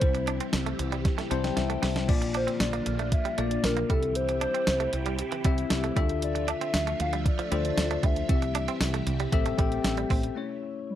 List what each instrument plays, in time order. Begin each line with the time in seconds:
Already playing: string machine E4, soft synth lead C5
0.01 fretless electric bass C2, string machine C3 E3 G3 G4, tine electric piano G3 C4 E4 C5, kick, closed hi-hat
0.15 muted clean electric guitar stroke, closed hi-hat
0.27 clean electric guitar D4, closed hi-hat
0.40 clean electric guitar C4, closed hi-hat
0.53 fretless electric bass C2, snare, closed hi-hat, tambourine
0.66 clean electric guitar A3, closed hi-hat
0.79 fretless electric bass C2, muted clean electric guitar stroke, closed hi-hat
0.92 clean electric guitar G3, closed hi-hat
1.05 muted clean electric guitar stroke, kick, snare, closed hi-hat
1.18 clean electric guitar A3, snare, closed hi-hat
1.30 fretless electric bass C2, tine electric piano G3 C4 E4 C5 A5, clean electric guitar G3, closed hi-hat
1.44 tine electric piano G5, snare, closed hi-hat
1.57 fretless electric bass C2, tine electric piano E5, muted clean electric guitar stroke, snare, closed hi-hat
1.70 clean electric guitar A3, closed hi-hat
1.82 fretless electric bass C2, clean electric guitar G3, snare, open hi-hat
1.96 snare, closed hi-hat
2.08 fretless electric bass A#1, string machine A#2 D3 F3 D4 F4, tine electric piano A#3 D4 F4 D5, kick, crash
2.22 muted clean electric guitar stroke, closed hi-hat
2.34 clean electric guitar D4, soft synth lead C5, closed hi-hat
2.47 clean electric guitar C4, closed hi-hat
2.60 fretless electric bass A#1, soft synth lead D5, snare, closed hi-hat, tambourine
2.73 clean electric guitar A#3, closed hi-hat
2.86 fretless electric bass A#1, muted clean electric guitar stroke, closed hi-hat
2.99 clean electric guitar A3, closed hi-hat
3.12 soft synth lead E5, muted clean electric guitar stroke, kick, closed hi-hat
3.25 clean electric guitar G3, closed hi-hat
3.37 fretless electric bass A#1, clean electric guitar A3, tine electric piano A#3 D4 F4 D5, soft synth lead D5, closed hi-hat
3.51 closed hi-hat
3.64 fretless electric bass A#1, soft synth lead A#4, muted clean electric guitar stroke, snare, closed hi-hat, tambourine
3.77 clean electric guitar A#3, closed hi-hat
3.89 fretless electric bass C2, string machine C3 E3 G3 E4 G4, clean electric guitar G3, tine electric piano C4 E4 G4 E5, soft synth lead A4, kick, closed hi-hat
4.03 closed hi-hat
4.15 soft synth lead C5, closed hi-hat
4.29 muted clean electric guitar stroke, closed hi-hat
4.41 clean electric guitar D4, soft synth lead C5, closed hi-hat
4.54 clean electric guitar C4, closed hi-hat
4.67 fretless electric bass C2, snare, closed hi-hat, tambourine
4.80 clean electric guitar A3, closed hi-hat
4.93 fretless electric bass C2, muted clean electric guitar stroke, closed hi-hat
5.06 clean electric guitar G3, closed hi-hat
5.19 muted clean electric guitar stroke, closed hi-hat
5.32 clean electric guitar E3, closed hi-hat
5.44 fretless electric bass C2, clean electric guitar G3, tine electric piano C4 E4 G4 E5, kick, closed hi-hat
5.58 closed hi-hat
5.70 fretless electric bass C2, muted clean electric guitar stroke, snare, closed hi-hat, tambourine
5.84 clean electric guitar A3, closed hi-hat
5.96 fretless electric bass D2, string machine D3 F3 A3 F4 E5, clean electric guitar G3, tine electric piano D4 F4 A4 E5, kick, closed hi-hat
6.09 closed hi-hat
6.22 soft synth lead D5, closed hi-hat
6.35 muted clean electric guitar stroke, closed hi-hat
6.48 clean electric guitar D4, soft synth lead E5, closed hi-hat
6.61 clean electric guitar C4, closed hi-hat
6.74 fretless electric bass D2, snare, closed hi-hat, tambourine
6.87 clean electric guitar A3, closed hi-hat
7.00 fretless electric bass D2, soft synth lead F5, muted clean electric guitar stroke, closed hi-hat
7.13 clean electric guitar G3, closed hi-hat
7.26 soft synth lead D5, muted clean electric guitar stroke, kick, closed hi-hat
7.39 clean electric guitar F3, closed hi-hat
7.51 fretless electric bass D2, clean electric guitar G3, tine electric piano D4 F4 A4 C5, closed hi-hat
7.65 closed hi-hat
7.77 fretless electric bass D2, muted clean electric guitar stroke, snare, closed hi-hat, tambourine
7.91 clean electric guitar A3, closed hi-hat
8.03 fretless electric bass D2, clean electric guitar G3, soft synth lead E5, kick, closed hi-hat
8.16 closed hi-hat
8.29 fretless electric bass C2, string machine C3 E3 G3 G4, tine electric piano C4 E4 G4 E5, kick, closed hi-hat
8.42 muted clean electric guitar stroke, closed hi-hat
8.55 clean electric guitar D4, closed hi-hat
8.68 clean electric guitar C4, closed hi-hat
8.81 fretless electric bass C2, snare, closed hi-hat, tambourine
8.94 clean electric guitar A3, closed hi-hat
9.07 fretless electric bass C2, muted clean electric guitar stroke, closed hi-hat
9.20 clean electric guitar G3, closed hi-hat
9.32 fretless electric bass A1, string machine A3, tine electric piano C4 G4 A4 E5, muted clean electric guitar stroke, kick, closed hi-hat
9.46 clean electric guitar A3, closed hi-hat
9.58 fretless electric bass A1, clean electric guitar G3, tine electric piano C4 G4 A4 G5, kick, closed hi-hat
9.72 closed hi-hat
9.84 fretless electric bass A1, muted clean electric guitar stroke, snare, closed hi-hat, tambourine
9.97 clean electric guitar G3, closed hi-hat
10.10 fretless electric bass A1, clean electric guitar C4, kick, open hi-hat
10.23 closed hi-hat
10.35 tine electric piano A3 C#4 E4 C#5
10.90 soft synth lead G3